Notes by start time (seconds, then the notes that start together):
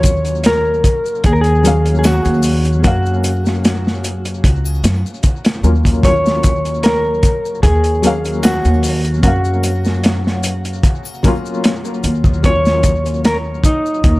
Already playing: D#2 F#3 A#3 C#4 F4 C#5
0.03 kick, closed hi-hat, maracas
0.25 closed hi-hat, maracas
0.44 A#4, snare, closed hi-hat, maracas
0.84 kick, closed hi-hat, maracas
1.06 maracas
1.24 D#2 G#4, kick, closed hi-hat, maracas
1.33 A#4
1.41 G#4, closed hi-hat
1.45 maracas
1.63 F#3 A#3 C#4, closed hi-hat, maracas
1.68 F5
1.85 closed hi-hat, maracas
1.99 G#4
2.04 F#4, snare, closed hi-hat, triangle, maracas
2.25 D#2, closed hi-hat, maracas
2.43 open hi-hat, maracas
2.65 closed hi-hat, maracas
2.82 F#2 F#3 A#3 C#4 F#4, kick, closed hi-hat, maracas
2.87 F5
3.06 maracas
3.23 closed hi-hat, triangle, maracas
3.46 snare, maracas
3.64 snare, closed hi-hat, maracas
3.87 snare
4.04 closed hi-hat, maracas
4.25 closed hi-hat, maracas
4.44 C#2, kick, closed hi-hat, maracas
4.65 triangle, maracas
4.84 F#2, snare, closed hi-hat, maracas
5.06 maracas
5.23 kick, closed hi-hat, maracas
5.45 snare, closed hi-hat, maracas
5.63 D#2 F#3 A#3 C#4 F4, maracas
5.85 kick, closed hi-hat, maracas
6.03 F#3 A#3 C#4 C#5, kick, closed hi-hat, maracas
6.07 F4
6.26 snare, maracas
6.43 kick, closed hi-hat, maracas
6.65 closed hi-hat, maracas
6.83 A#4, snare, closed hi-hat, maracas
7.23 kick, closed hi-hat, maracas
7.45 maracas
7.63 D#2 G#4, kick, closed hi-hat, maracas
7.84 closed hi-hat, maracas
8.02 F#3 A#3 C#4, closed hi-hat, maracas
8.07 F5
8.25 closed hi-hat, maracas
8.43 F#4, snare, closed hi-hat, triangle, maracas
8.65 D#2, closed hi-hat, maracas
8.83 open hi-hat, maracas
9.04 closed hi-hat, maracas
9.23 F#2 F#3 A#3 C#4 F#4, kick, closed hi-hat, maracas
9.27 F5
9.45 maracas
9.63 closed hi-hat, triangle, maracas
9.85 snare, maracas
10.04 snare, closed hi-hat, maracas
10.27 snare
10.43 closed hi-hat, maracas
10.65 closed hi-hat, maracas
10.83 kick, closed hi-hat, maracas
11.05 triangle, maracas
11.23 F#3 A#3 C#4, kick, closed hi-hat, maracas
11.28 F4
11.46 maracas
11.64 snare, closed hi-hat, maracas
11.85 maracas
12.04 D#2, closed hi-hat, maracas
12.24 kick, maracas
12.43 F#3 A#3 C#4 C#5, kick, closed hi-hat, maracas
12.47 F4
12.65 snare, maracas
12.83 kick, closed hi-hat, maracas
13.06 closed hi-hat, maracas
13.25 A#4, snare, closed hi-hat, maracas
13.64 D#4, kick, closed hi-hat, maracas
13.86 maracas
14.04 D#2, kick, closed hi-hat, maracas